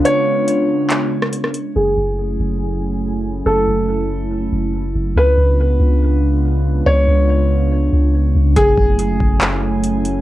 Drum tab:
HH |x---x---x---x-x-|----------------|----------------|----------------|
CP |--------x-------|----------------|----------------|----------------|
SD |-----------r-r--|----------------|----------------|----------------|
BD |----------------|----------------|----------------|----------------|

HH |----------------|x---x---x---x-x-|
CP |----------------|--------x-------|
SD |----------------|----------------|
BD |----------------|o-o---o---------|